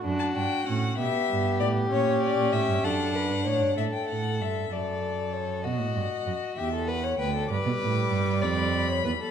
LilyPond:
<<
  \new Staff \with { instrumentName = "Violin" } { \time 6/8 \key d \major \tempo 4. = 65 r16 a''16 g''8 fis''8 e''4 d''8 | cis''8 d''8 e''8 fis''4. | e''16 g''16 fis''8 e''8 d''4 cis''8 | dis''4. e''8 fis''8 g''8 |
\key g \lydian d'''4. b''4. | }
  \new Staff \with { instrumentName = "Violin" } { \time 6/8 \key d \major fis'4. g'4.~ | g'4. a'8 b'8 cis''8 | a'4. a'4. | fis'4. g'16 a'16 b'16 cis''16 b'16 a'16 |
\key g \lydian b'4. d''8. cis''16 b'16 a'16 | }
  \new Staff \with { instrumentName = "Viola" } { \time 6/8 \key d \major d'8 d'8 cis'8 b4. | cis'4. d'4. | r2. | r2. |
\key g \lydian g2. | }
  \new Staff \with { instrumentName = "Cello" } { \clef bass \time 6/8 \key d \major fis,8 g,8 a,8 b,8 g,8 a,8 | ais,8. ais,16 a,16 g,16 fis,8. g,16 a,16 g,16 | a,8 a,8 g,8 fis,4. | b,16 a,16 g,8 fis,8 e,4 d,8 |
\key g \lydian g,16 b,16 a,8 g,8 f,4 e,8 | }
>>